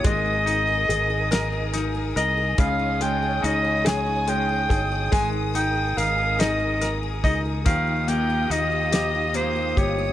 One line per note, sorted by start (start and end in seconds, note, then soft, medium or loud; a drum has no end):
0.00 0.14 F3 medium
0.00 0.25 D#4 medium
0.00 2.55 D#6 medium
0.04 0.86 G#1 loud
0.04 2.55 G#3 medium
0.04 0.45 A#3 medium
0.04 0.67 G#4 medium
0.04 5.09 G#4 medium
0.04 2.57 A#4 medium
0.04 1.86 D#5 loud
0.04 kick loud
0.04 closed hi-hat medium
0.26 0.89 D#4 medium
0.46 1.30 A#3 medium
0.46 1.72 D#4 medium
0.46 closed hi-hat medium
0.67 1.09 G#4 medium
0.89 2.12 G#1 medium
0.89 1.52 D#4 medium
0.89 2.55 G#4 medium
0.89 closed hi-hat soft
1.10 1.31 G#4 medium
1.31 1.72 A#3 medium
1.31 1.94 G#4 medium
1.31 2.15 A#4 medium
1.31 snare loud
1.31 closed hi-hat medium
1.52 2.15 D#4 medium
1.73 2.59 A#3 medium
1.73 2.56 D#4 medium
1.73 snare soft
1.73 closed hi-hat soft
1.95 2.37 G#4 medium
2.16 2.56 C2 medium
2.16 2.79 D#4 medium
2.16 2.57 A#4 medium
2.16 2.61 D#5 loud
2.16 closed hi-hat medium
2.37 2.59 G#4 medium
2.58 3.39 C#2 loud
2.58 5.08 C#3 medium
2.58 3.01 G#3 medium
2.58 3.22 G#4 medium
2.58 5.10 C#5 medium
2.58 3.01 F5 loud
2.58 7.62 D#6 medium
2.58 kick loud
2.58 closed hi-hat medium
2.79 3.43 D#4 medium
3.01 4.26 G#3 medium
3.01 3.85 G#3 medium
3.01 3.46 G5 loud
3.01 closed hi-hat medium
3.23 3.64 G#4 medium
3.42 4.66 C#2 loud
3.42 5.08 D#4 medium
3.42 4.06 D#4 medium
3.42 3.88 D#5 loud
3.42 closed hi-hat medium
3.64 3.86 G#4 medium
3.85 4.27 G#3 medium
3.85 4.68 G#4 medium
3.85 4.49 G#4 medium
3.85 4.30 G#5 loud
3.85 snare loud
3.85 closed hi-hat medium
4.06 4.70 D#4 medium
4.28 5.53 G#3 medium
4.28 5.10 G#3 medium
4.28 5.12 G5 loud
4.28 closed hi-hat medium
4.49 4.91 G#4 medium
4.69 5.10 G1 medium
4.69 5.32 D#4 medium
4.69 5.11 G#4 medium
4.69 kick medium
4.69 closed hi-hat medium
4.91 5.12 G#4 medium
5.12 5.93 G#1 loud
5.12 6.38 D#3 medium
5.12 7.62 G#3 medium
5.12 5.74 G#4 medium
5.12 7.64 G#4 medium
5.12 7.64 A#4 medium
5.12 5.29 G#5 loud
5.12 kick loud
5.12 closed hi-hat medium
5.33 5.96 D#4 medium
5.53 6.81 A#3 medium
5.53 6.38 D#4 medium
5.53 5.99 G5 loud
5.53 closed hi-hat soft
5.75 6.17 G#4 medium
5.97 7.20 G#1 loud
5.97 6.59 D#4 medium
5.97 6.80 A#4 medium
5.97 6.41 F5 loud
5.97 closed hi-hat medium
6.18 6.38 G#4 medium
6.39 7.66 D#3 medium
6.39 7.22 D#4 medium
6.39 7.02 G#4 medium
6.39 6.97 D#5 loud
6.39 snare loud
6.39 closed hi-hat medium
6.60 7.23 D#4 medium
6.81 8.09 A#3 medium
6.81 7.63 A#4 medium
6.81 snare soft
6.81 closed hi-hat medium
7.03 7.44 G#4 medium
7.24 7.64 C#2 medium
7.24 7.65 D#4 medium
7.24 7.87 D#4 medium
7.24 7.40 D#5 medium
7.24 kick medium
7.24 closed hi-hat medium
7.45 7.66 G#4 medium
7.65 8.47 D#2 loud
7.65 10.13 D#3 medium
7.65 8.92 F3 medium
7.65 10.13 G4 medium
7.65 8.29 G4 medium
7.65 10.13 F5 medium
7.65 8.10 F5 loud
7.65 10.13 D#6 medium
7.65 kick loud
7.65 closed hi-hat medium
7.87 8.50 D#4 medium
8.08 9.33 A#3 medium
8.08 9.34 A#3 medium
8.08 8.53 G5 medium
8.08 closed hi-hat soft
8.30 8.71 G4 medium
8.50 9.73 D#2 medium
8.50 10.13 D#4 medium
8.50 9.14 D#4 medium
8.50 9.37 D#5 loud
8.50 closed hi-hat medium
8.72 8.92 G4 medium
8.92 10.13 F3 medium
8.92 9.76 G4 medium
8.92 9.55 G4 medium
8.92 snare loud
8.92 closed hi-hat medium
9.15 9.77 D#4 medium
9.34 10.13 A#3 medium
9.34 9.79 C5 medium
9.34 closed hi-hat medium
9.56 9.97 G4 medium
9.77 10.13 G1 medium
9.77 10.13 D#4 medium
9.77 10.13 G4 medium
9.77 10.13 C#5 medium
9.77 kick medium
9.77 closed hi-hat medium
9.98 10.13 G4 medium